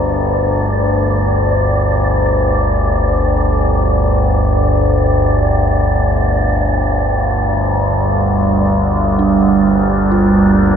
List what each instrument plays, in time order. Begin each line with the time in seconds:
Already playing: synth drone G1 D2, synth bell G4, synth texture D5
7.21 analog synth pad G3
9.19 synth bell D4
9.87 analog synth pad A#4
10.12 synth bell F4